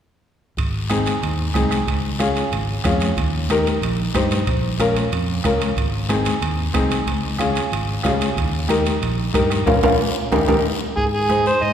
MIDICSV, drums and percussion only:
0, 0, Header, 1, 3, 480
1, 0, Start_track
1, 0, Key_signature, -4, "major"
1, 0, Tempo, 324851
1, 851, Time_signature, 4, 2, 24, 8
1, 17332, End_track
2, 0, Start_track
2, 0, Title_t, "Two-headed folk drums"
2, 847, Note_on_c, 9, 36, 87
2, 995, Note_off_c, 9, 36, 0
2, 1324, Note_on_c, 9, 37, 76
2, 1472, Note_off_c, 9, 37, 0
2, 2278, Note_on_c, 9, 37, 72
2, 2284, Note_on_c, 9, 36, 81
2, 2426, Note_off_c, 9, 37, 0
2, 2432, Note_off_c, 9, 36, 0
2, 2525, Note_on_c, 9, 37, 74
2, 2673, Note_off_c, 9, 37, 0
2, 2764, Note_on_c, 9, 36, 92
2, 2912, Note_off_c, 9, 36, 0
2, 3242, Note_on_c, 9, 37, 70
2, 3390, Note_off_c, 9, 37, 0
2, 4197, Note_on_c, 9, 37, 83
2, 4202, Note_on_c, 9, 36, 80
2, 4344, Note_off_c, 9, 37, 0
2, 4350, Note_off_c, 9, 36, 0
2, 4683, Note_on_c, 9, 36, 84
2, 4831, Note_off_c, 9, 36, 0
2, 5172, Note_on_c, 9, 37, 79
2, 5320, Note_off_c, 9, 37, 0
2, 6126, Note_on_c, 9, 36, 79
2, 6127, Note_on_c, 9, 37, 87
2, 6274, Note_off_c, 9, 36, 0
2, 6275, Note_off_c, 9, 37, 0
2, 6606, Note_on_c, 9, 36, 80
2, 6754, Note_off_c, 9, 36, 0
2, 7089, Note_on_c, 9, 37, 71
2, 7236, Note_off_c, 9, 37, 0
2, 8038, Note_on_c, 9, 37, 80
2, 8043, Note_on_c, 9, 36, 82
2, 8186, Note_off_c, 9, 37, 0
2, 8190, Note_off_c, 9, 36, 0
2, 8518, Note_on_c, 9, 36, 86
2, 8666, Note_off_c, 9, 36, 0
2, 9003, Note_on_c, 9, 37, 76
2, 9151, Note_off_c, 9, 37, 0
2, 9959, Note_on_c, 9, 36, 82
2, 9962, Note_on_c, 9, 37, 81
2, 10107, Note_off_c, 9, 36, 0
2, 10110, Note_off_c, 9, 37, 0
2, 10439, Note_on_c, 9, 36, 76
2, 10587, Note_off_c, 9, 36, 0
2, 10913, Note_on_c, 9, 37, 69
2, 11061, Note_off_c, 9, 37, 0
2, 11872, Note_on_c, 9, 37, 82
2, 11880, Note_on_c, 9, 36, 80
2, 12020, Note_off_c, 9, 37, 0
2, 12028, Note_off_c, 9, 36, 0
2, 12363, Note_on_c, 9, 36, 87
2, 12510, Note_off_c, 9, 36, 0
2, 12837, Note_on_c, 9, 37, 67
2, 12985, Note_off_c, 9, 37, 0
2, 13801, Note_on_c, 9, 36, 82
2, 13807, Note_on_c, 9, 37, 75
2, 13949, Note_off_c, 9, 36, 0
2, 13955, Note_off_c, 9, 37, 0
2, 14043, Note_on_c, 9, 37, 65
2, 14191, Note_off_c, 9, 37, 0
2, 14282, Note_on_c, 9, 36, 100
2, 14430, Note_off_c, 9, 36, 0
2, 14523, Note_on_c, 9, 36, 100
2, 14670, Note_off_c, 9, 36, 0
2, 15243, Note_on_c, 9, 36, 78
2, 15391, Note_off_c, 9, 36, 0
2, 15483, Note_on_c, 9, 36, 91
2, 15630, Note_off_c, 9, 36, 0
2, 16205, Note_on_c, 9, 36, 77
2, 16353, Note_off_c, 9, 36, 0
2, 16688, Note_on_c, 9, 37, 70
2, 16836, Note_off_c, 9, 37, 0
2, 17332, End_track
3, 0, Start_track
3, 0, Title_t, "Drums"
3, 844, Note_on_c, 9, 74, 54
3, 856, Note_on_c, 9, 63, 33
3, 864, Note_on_c, 9, 65, 64
3, 992, Note_off_c, 9, 74, 0
3, 1004, Note_off_c, 9, 63, 0
3, 1012, Note_off_c, 9, 65, 0
3, 1324, Note_on_c, 9, 73, 74
3, 1334, Note_on_c, 9, 63, 82
3, 1342, Note_on_c, 9, 65, 62
3, 1472, Note_off_c, 9, 73, 0
3, 1482, Note_off_c, 9, 63, 0
3, 1490, Note_off_c, 9, 65, 0
3, 1564, Note_on_c, 9, 73, 68
3, 1587, Note_on_c, 9, 65, 64
3, 1712, Note_off_c, 9, 73, 0
3, 1735, Note_off_c, 9, 65, 0
3, 1812, Note_on_c, 9, 74, 63
3, 1815, Note_on_c, 9, 63, 30
3, 1824, Note_on_c, 9, 65, 60
3, 1960, Note_off_c, 9, 74, 0
3, 1963, Note_off_c, 9, 63, 0
3, 1972, Note_off_c, 9, 65, 0
3, 2293, Note_on_c, 9, 73, 76
3, 2294, Note_on_c, 9, 63, 90
3, 2306, Note_on_c, 9, 65, 57
3, 2441, Note_off_c, 9, 73, 0
3, 2442, Note_off_c, 9, 63, 0
3, 2454, Note_off_c, 9, 65, 0
3, 2528, Note_on_c, 9, 73, 71
3, 2547, Note_on_c, 9, 65, 59
3, 2676, Note_off_c, 9, 73, 0
3, 2695, Note_off_c, 9, 65, 0
3, 2770, Note_on_c, 9, 63, 31
3, 2771, Note_on_c, 9, 74, 64
3, 2783, Note_on_c, 9, 65, 64
3, 2918, Note_off_c, 9, 63, 0
3, 2919, Note_off_c, 9, 74, 0
3, 2931, Note_off_c, 9, 65, 0
3, 3246, Note_on_c, 9, 73, 73
3, 3253, Note_on_c, 9, 63, 72
3, 3257, Note_on_c, 9, 65, 62
3, 3394, Note_off_c, 9, 73, 0
3, 3401, Note_off_c, 9, 63, 0
3, 3405, Note_off_c, 9, 65, 0
3, 3484, Note_on_c, 9, 73, 73
3, 3498, Note_on_c, 9, 65, 58
3, 3632, Note_off_c, 9, 73, 0
3, 3646, Note_off_c, 9, 65, 0
3, 3723, Note_on_c, 9, 74, 59
3, 3735, Note_on_c, 9, 65, 65
3, 3737, Note_on_c, 9, 63, 35
3, 3871, Note_off_c, 9, 74, 0
3, 3882, Note_off_c, 9, 65, 0
3, 3885, Note_off_c, 9, 63, 0
3, 4203, Note_on_c, 9, 73, 68
3, 4210, Note_on_c, 9, 63, 79
3, 4214, Note_on_c, 9, 65, 62
3, 4350, Note_off_c, 9, 73, 0
3, 4358, Note_off_c, 9, 63, 0
3, 4361, Note_off_c, 9, 65, 0
3, 4440, Note_on_c, 9, 73, 70
3, 4460, Note_on_c, 9, 65, 62
3, 4588, Note_off_c, 9, 73, 0
3, 4608, Note_off_c, 9, 65, 0
3, 4682, Note_on_c, 9, 74, 60
3, 4690, Note_on_c, 9, 63, 29
3, 4696, Note_on_c, 9, 65, 65
3, 4830, Note_off_c, 9, 74, 0
3, 4838, Note_off_c, 9, 63, 0
3, 4844, Note_off_c, 9, 65, 0
3, 5167, Note_on_c, 9, 63, 83
3, 5170, Note_on_c, 9, 73, 72
3, 5178, Note_on_c, 9, 65, 58
3, 5315, Note_off_c, 9, 63, 0
3, 5317, Note_off_c, 9, 73, 0
3, 5325, Note_off_c, 9, 65, 0
3, 5411, Note_on_c, 9, 73, 68
3, 5425, Note_on_c, 9, 65, 61
3, 5559, Note_off_c, 9, 73, 0
3, 5573, Note_off_c, 9, 65, 0
3, 5644, Note_on_c, 9, 63, 29
3, 5650, Note_on_c, 9, 74, 68
3, 5665, Note_on_c, 9, 65, 66
3, 5792, Note_off_c, 9, 63, 0
3, 5798, Note_off_c, 9, 74, 0
3, 5813, Note_off_c, 9, 65, 0
3, 6125, Note_on_c, 9, 63, 74
3, 6127, Note_on_c, 9, 73, 71
3, 6140, Note_on_c, 9, 65, 61
3, 6273, Note_off_c, 9, 63, 0
3, 6275, Note_off_c, 9, 73, 0
3, 6287, Note_off_c, 9, 65, 0
3, 6368, Note_on_c, 9, 73, 72
3, 6382, Note_on_c, 9, 65, 68
3, 6516, Note_off_c, 9, 73, 0
3, 6530, Note_off_c, 9, 65, 0
3, 6610, Note_on_c, 9, 65, 62
3, 6610, Note_on_c, 9, 74, 59
3, 6613, Note_on_c, 9, 63, 29
3, 6757, Note_off_c, 9, 65, 0
3, 6758, Note_off_c, 9, 74, 0
3, 6761, Note_off_c, 9, 63, 0
3, 7087, Note_on_c, 9, 63, 78
3, 7087, Note_on_c, 9, 73, 72
3, 7098, Note_on_c, 9, 65, 62
3, 7234, Note_off_c, 9, 73, 0
3, 7235, Note_off_c, 9, 63, 0
3, 7246, Note_off_c, 9, 65, 0
3, 7335, Note_on_c, 9, 73, 67
3, 7337, Note_on_c, 9, 65, 63
3, 7483, Note_off_c, 9, 73, 0
3, 7484, Note_off_c, 9, 65, 0
3, 7569, Note_on_c, 9, 74, 65
3, 7571, Note_on_c, 9, 63, 35
3, 7578, Note_on_c, 9, 65, 64
3, 7717, Note_off_c, 9, 74, 0
3, 7719, Note_off_c, 9, 63, 0
3, 7725, Note_off_c, 9, 65, 0
3, 8044, Note_on_c, 9, 73, 67
3, 8049, Note_on_c, 9, 63, 82
3, 8057, Note_on_c, 9, 65, 62
3, 8192, Note_off_c, 9, 73, 0
3, 8197, Note_off_c, 9, 63, 0
3, 8205, Note_off_c, 9, 65, 0
3, 8287, Note_on_c, 9, 73, 65
3, 8299, Note_on_c, 9, 65, 70
3, 8435, Note_off_c, 9, 73, 0
3, 8447, Note_off_c, 9, 65, 0
3, 8522, Note_on_c, 9, 74, 57
3, 8527, Note_on_c, 9, 63, 30
3, 8539, Note_on_c, 9, 65, 62
3, 8670, Note_off_c, 9, 74, 0
3, 8675, Note_off_c, 9, 63, 0
3, 8687, Note_off_c, 9, 65, 0
3, 9005, Note_on_c, 9, 73, 68
3, 9012, Note_on_c, 9, 63, 78
3, 9014, Note_on_c, 9, 65, 61
3, 9153, Note_off_c, 9, 73, 0
3, 9159, Note_off_c, 9, 63, 0
3, 9162, Note_off_c, 9, 65, 0
3, 9239, Note_on_c, 9, 73, 70
3, 9253, Note_on_c, 9, 65, 69
3, 9387, Note_off_c, 9, 73, 0
3, 9401, Note_off_c, 9, 65, 0
3, 9484, Note_on_c, 9, 74, 57
3, 9486, Note_on_c, 9, 63, 33
3, 9493, Note_on_c, 9, 65, 69
3, 9632, Note_off_c, 9, 74, 0
3, 9634, Note_off_c, 9, 63, 0
3, 9641, Note_off_c, 9, 65, 0
3, 9960, Note_on_c, 9, 63, 79
3, 9968, Note_on_c, 9, 65, 64
3, 9969, Note_on_c, 9, 73, 68
3, 10108, Note_off_c, 9, 63, 0
3, 10116, Note_off_c, 9, 65, 0
3, 10117, Note_off_c, 9, 73, 0
3, 10210, Note_on_c, 9, 73, 67
3, 10220, Note_on_c, 9, 65, 70
3, 10358, Note_off_c, 9, 73, 0
3, 10367, Note_off_c, 9, 65, 0
3, 10450, Note_on_c, 9, 63, 29
3, 10450, Note_on_c, 9, 74, 61
3, 10457, Note_on_c, 9, 65, 68
3, 10597, Note_off_c, 9, 74, 0
3, 10598, Note_off_c, 9, 63, 0
3, 10605, Note_off_c, 9, 65, 0
3, 10923, Note_on_c, 9, 73, 70
3, 10924, Note_on_c, 9, 63, 81
3, 10944, Note_on_c, 9, 65, 65
3, 11071, Note_off_c, 9, 73, 0
3, 11072, Note_off_c, 9, 63, 0
3, 11092, Note_off_c, 9, 65, 0
3, 11164, Note_on_c, 9, 73, 67
3, 11184, Note_on_c, 9, 65, 72
3, 11311, Note_off_c, 9, 73, 0
3, 11332, Note_off_c, 9, 65, 0
3, 11406, Note_on_c, 9, 74, 60
3, 11418, Note_on_c, 9, 63, 34
3, 11426, Note_on_c, 9, 65, 67
3, 11554, Note_off_c, 9, 74, 0
3, 11566, Note_off_c, 9, 63, 0
3, 11573, Note_off_c, 9, 65, 0
3, 11883, Note_on_c, 9, 73, 69
3, 11892, Note_on_c, 9, 63, 79
3, 11911, Note_on_c, 9, 65, 58
3, 11911, Note_on_c, 9, 66, 59
3, 12030, Note_off_c, 9, 73, 0
3, 12040, Note_off_c, 9, 63, 0
3, 12058, Note_off_c, 9, 65, 0
3, 12058, Note_off_c, 9, 66, 0
3, 12132, Note_on_c, 9, 73, 66
3, 12143, Note_on_c, 9, 65, 74
3, 12280, Note_off_c, 9, 73, 0
3, 12291, Note_off_c, 9, 65, 0
3, 12373, Note_on_c, 9, 74, 67
3, 12376, Note_on_c, 9, 63, 30
3, 12384, Note_on_c, 9, 65, 64
3, 12520, Note_off_c, 9, 74, 0
3, 12523, Note_off_c, 9, 63, 0
3, 12532, Note_off_c, 9, 65, 0
3, 12844, Note_on_c, 9, 63, 83
3, 12851, Note_on_c, 9, 73, 66
3, 12864, Note_on_c, 9, 65, 68
3, 12992, Note_off_c, 9, 63, 0
3, 12999, Note_off_c, 9, 73, 0
3, 13012, Note_off_c, 9, 65, 0
3, 13087, Note_on_c, 9, 73, 69
3, 13101, Note_on_c, 9, 65, 65
3, 13235, Note_off_c, 9, 73, 0
3, 13248, Note_off_c, 9, 65, 0
3, 13325, Note_on_c, 9, 63, 28
3, 13334, Note_on_c, 9, 74, 57
3, 13339, Note_on_c, 9, 65, 61
3, 13473, Note_off_c, 9, 63, 0
3, 13481, Note_off_c, 9, 74, 0
3, 13487, Note_off_c, 9, 65, 0
3, 13804, Note_on_c, 9, 73, 75
3, 13805, Note_on_c, 9, 63, 82
3, 13819, Note_on_c, 9, 65, 64
3, 13952, Note_off_c, 9, 63, 0
3, 13952, Note_off_c, 9, 73, 0
3, 13967, Note_off_c, 9, 65, 0
3, 14054, Note_on_c, 9, 73, 65
3, 14062, Note_on_c, 9, 65, 65
3, 14202, Note_off_c, 9, 73, 0
3, 14210, Note_off_c, 9, 65, 0
3, 14289, Note_on_c, 9, 63, 88
3, 14290, Note_on_c, 9, 74, 82
3, 14297, Note_on_c, 9, 65, 84
3, 14436, Note_off_c, 9, 63, 0
3, 14437, Note_off_c, 9, 74, 0
3, 14445, Note_off_c, 9, 65, 0
3, 14528, Note_on_c, 9, 63, 89
3, 14530, Note_on_c, 9, 74, 104
3, 14533, Note_on_c, 9, 65, 108
3, 14676, Note_off_c, 9, 63, 0
3, 14677, Note_off_c, 9, 74, 0
3, 14681, Note_off_c, 9, 65, 0
3, 15244, Note_on_c, 9, 63, 77
3, 15250, Note_on_c, 9, 74, 86
3, 15256, Note_on_c, 9, 65, 96
3, 15392, Note_off_c, 9, 63, 0
3, 15397, Note_off_c, 9, 74, 0
3, 15404, Note_off_c, 9, 65, 0
3, 15484, Note_on_c, 9, 74, 87
3, 15492, Note_on_c, 9, 63, 97
3, 15493, Note_on_c, 9, 65, 93
3, 15632, Note_off_c, 9, 74, 0
3, 15640, Note_off_c, 9, 63, 0
3, 15641, Note_off_c, 9, 65, 0
3, 16215, Note_on_c, 9, 74, 55
3, 16217, Note_on_c, 9, 63, 30
3, 16363, Note_off_c, 9, 74, 0
3, 16365, Note_off_c, 9, 63, 0
3, 16693, Note_on_c, 9, 63, 75
3, 16698, Note_on_c, 9, 73, 66
3, 16841, Note_off_c, 9, 63, 0
3, 16846, Note_off_c, 9, 73, 0
3, 16935, Note_on_c, 9, 73, 66
3, 17083, Note_off_c, 9, 73, 0
3, 17172, Note_on_c, 9, 63, 27
3, 17181, Note_on_c, 9, 74, 60
3, 17320, Note_off_c, 9, 63, 0
3, 17328, Note_off_c, 9, 74, 0
3, 17332, End_track
0, 0, End_of_file